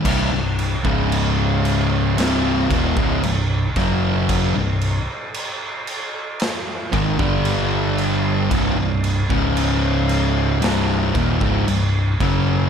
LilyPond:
<<
  \new Staff \with { instrumentName = "Distorted electric guitar" } { \clef bass \time 4/4 \key c \phrygian \tempo 4 = 57 <c, g,>16 <c, g,>8 <des, aes, des>4~ <des, aes, des>16 <c, g, c>8 <ees, bes,>16 <des, aes,>16 <c, g,>8 <fis, des fis>8~ | <fis, des fis>16 <c, g,>8 r4. r16 <aes, ees>16 <g, d g>4~ <g, d g>16 | <c, g,>16 <c, g,>8 <des, aes, des>4~ <des, aes, des>16 <c, g, c>8 <ees, bes,>16 <des, aes,>16 <c, g,>8 <fis, des fis>8 | }
  \new Staff \with { instrumentName = "Distorted electric guitar" } { \clef bass \time 4/4 \key c \phrygian <c, g,>16 <c, g,>8 <des, aes, des>4~ <des, aes, des>16 <c, g, c>8 <ees, bes,>16 <des, aes,>16 <c, g,>8 <fis, des fis>8~ | <fis, des fis>16 <c, g,>8 r4. r16 <aes, ees>16 <g, d g>4~ <g, d g>16 | <c, g,>16 <c, g,>8 <des, aes, des>4~ <des, aes, des>16 <c, g, c>8 <ees, bes,>16 <des, aes,>16 <c, g,>8 <fis, des fis>8 | }
  \new Staff \with { instrumentName = "Distorted electric guitar" } { \clef bass \time 4/4 \key c \phrygian <c, g,>16 <c, g,>8 <des, aes, des>4~ <des, aes, des>16 <c, g, c>8 <ees, bes,>16 <des, aes,>16 <c, g,>8 <fis, des fis>8~ | <fis, des fis>16 <c, g,>8 r4. r16 <aes, ees>16 <g, d g>4~ <g, d g>16 | <c, g,>16 <c, g,>8 <des, aes, des>4~ <des, aes, des>16 <c, g, c>8 <ees, bes,>16 <des, aes,>16 <c, g,>8 <fis, des fis>8 | }
  \new Staff \with { instrumentName = "Picked electric bass" } { \clef bass \time 4/4 \key c \phrygian c,,16 c,,8 des,,4~ des,,16 c,,8 ees,,16 des,,16 c,,8 fis,,8~ | fis,,16 c,,8 r4. r16 aes,,16 g,,4~ g,,16 | c,,16 c,,8 des,,4~ des,,16 c,,8 ees,,16 des,,16 c,,8 fis,,8 | }
  \new DrumStaff \with { instrumentName = "Drums" } \drummode { \time 4/4 <cymc bd>8 cymc16 bd16 cymc8 cymc8 <cymc sn>8 <cymc bd>16 bd16 cymc8 <cymc bd sn>8 | <cymc bd>8 cymc8 cymc8 cymc8 <cymc sn>8 <cymc bd>16 bd16 cymc8 cymc8 | <cymc bd>8 cymc16 bd16 cymc8 cymc8 <cymc sn>8 <cymc bd>16 bd16 cymc8 <cymc bd>8 | }
>>